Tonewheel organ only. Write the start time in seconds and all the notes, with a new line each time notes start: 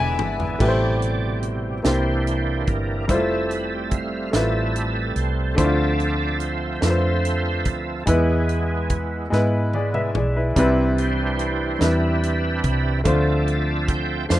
Already playing: E3 B3 D4 G#4 B4
0.18 E5
0.59 B2 C3 G3 G4 D5
1.85 E3 A#3 D4 E4 G4 C5
2.26 C5
2.68 A#4
3.09 G3 A3 C4 A4 E5
3.55 B4
3.65 A4
3.75 G4
3.84 A4
3.94 F5
4.36 C4 A4 E5
5.18 C5
5.59 F3 C4 F4 A4 D5 E5
6.44 C5
6.83 F4 A4 C5
7.68 A4
8.07 G#3 B3 E4 G#4
9.73 G#3 B3 E4
10.56 E3 C4 D4
10.99 E4 G4 C5
11.81 G4 B4 E5
13.04 F3 C4 F4 A4 D5 E5
13.88 G5
14.29 A4 C5 F5